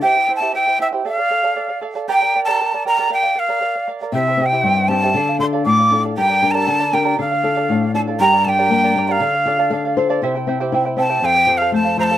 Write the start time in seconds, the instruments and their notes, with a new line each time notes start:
0.01 charango E4 G4 C5 E5 G5, quena G5
0.16 charango E4 C5
0.28 charango E4 C5 E5 G5
0.36 quena A5
0.41 charango E4 G4 C5 E5 G5
0.54 charango E4 C5 E5 G5, quena G5
0.66 charango E4 C5 G5
0.79 charango E4 C5 E5 G5, quena E5
0.93 charango E4 G4 C5 E5 G5
1.05 charango A4 D5 F5, quena F5
1.18 charango D5 F5
1.30 charango A4 D5 F5
1.43 charango A4 D5 F5
1.56 charango A4 D5 F5
1.69 charango D5 F5
1.81 charango A4 D5 F5
1.95 charango A4 D5 F5
2.08 charango G4 A#4 D5 G5 A#5, quena G5
2.21 charango A#4 D5 A#5
2.34 charango A#4 D5 G5 A#5
2.45 charango G4 A#4 D5 G5 A#5, quena A5
2.60 charango A#4 D5 G5 A#5
2.73 charango A#4 D5 A#5
2.85 charango A#4 D5 G5 A#5, quena A#5
2.98 charango G4 A#4 D5 G5 A#5
3.10 charango A#4 D5 F5, quena G5
3.23 charango D5 F5
3.35 charango A#4 D5 F5
3.39 quena F5
3.48 charango A#4 D5 F5
3.61 charango A#4 D5 F5
3.75 charango D5 F5
3.87 charango A#4 D5 F5
4.01 charango A#4 D5 F5
4.12 nylon-string guitar C3, charango E4 G4 C5 E5 G5, quena E5
4.28 charango E4 C5 G5
4.37 nylon-string guitar C4 E4 G4, charango E4 E5
4.41 charango C5 G5
4.46 quena G5
4.52 charango E4 G4 C5 E5 G5
4.63 nylon-string guitar G2, charango E4 C5 E5 G5
4.77 charango E4 C5 G5
4.88 nylon-string guitar C4 E4 G4, charango E4 C5 E5 G5, quena A5
5.03 charango E4 G4 C5 E5 G5
5.14 nylon-string guitar D3, charango A4 D5 F5
5.29 charango F5
5.39 nylon-string guitar D4 F4 A4, charango A4 D5 F5, quena C6
5.53 charango A4 D5 F5
5.65 nylon-string guitar A2, charango A4 D5 F5, quena D6
5.78 charango D5 F5
5.91 nylon-string guitar D4 F4 A4, charango A4 D5 F5
6.04 charango A4 D5 F5
6.17 nylon-string guitar G2, charango G4 A#4 D5 G5 A#5, quena G5
6.28 charango A#4 D5 A#5
6.42 nylon-string guitar D4 G4 A#4, charango A#4 D5 G5 A#5
6.51 charango A#4 D5 G5 A#5, quena A5 A#5
6.56 charango G4
6.67 nylon-string guitar D3, charango A#4 D5 G5 A#5
6.79 charango A#4 D5 A#5
6.93 nylon-string guitar D4 G4 A#4, charango A#4 D5 G5 A#5, quena G5
7.05 charango G4 A#4 D5 G5 A#5
7.18 nylon-string guitar D3, charango A4 D5 F5, quena F5
7.31 charango D5 F5
7.43 nylon-string guitar D4 F4 A4, charango A4 D5 F5
7.56 charango A4 D5 F5
7.69 nylon-string guitar A2, charango A4 D5 F5
7.83 charango D5 F5
7.94 nylon-string guitar D4 F4 A4, charango A4 D5 F5, quena A5
8.07 charango A4 D5 F5
8.20 nylon-string guitar G2, charango G4 A#4 D5 G5 A#5, quena A#5
8.33 charango A#4 D5 A#5
8.45 nylon-string guitar G3, charango A#4 D5 G5 A#5, quena A5
8.49 quena G5
8.59 charango G4 A#4 D5 G5 A#5
8.70 nylon-string guitar A#3, charango A#4 D5 G5 A#5
8.83 charango A#4 D5 A#5
8.96 nylon-string guitar G3, charango A#4 D5 G5 A#5
9.07 charango G4 A#4 D5 G5 A#5, quena G5
9.12 quena F5
9.20 nylon-string guitar D3, charango A4 D5 F5
9.34 charango D5 F5
9.46 nylon-string guitar F4, charango A4 D5 F5
9.59 charango A4 D5 F5
9.70 nylon-string guitar A4 F5, charango A4 D5 F5
9.85 charango D5 F5
9.97 nylon-string guitar F4 C5, charango A4 D5 F5
10.09 charango A4 D5 F5
10.22 nylon-string guitar C3, charango E4 G4 C5 E5 G5
10.35 charango E4 C5 G5
10.47 nylon-string guitar C4, charango E4 C5 E5 G5
10.60 charango E4 G4 C5 E5 G5
10.72 nylon-string guitar E4, charango E4 C5 E5 G5
10.85 charango E4 C5 G5
10.96 nylon-string guitar C4, charango E4 C5 E5 G5, quena A5
11.09 charango E4 G4 C5 E5 G5
11.22 nylon-string guitar F2, charango A4 C5 F5, quena G5
11.36 charango C5
11.47 nylon-string guitar F3, charango A4 C5 F5
11.58 charango A4 C5 F5, quena F5
11.72 nylon-string guitar A3, charango A4 C5 F5, quena A5
11.85 charango C5 F5
11.97 nylon-string guitar F3, charango A4 C5 F5, quena A#5
12.03 quena A5
12.11 charango A4 C5 F5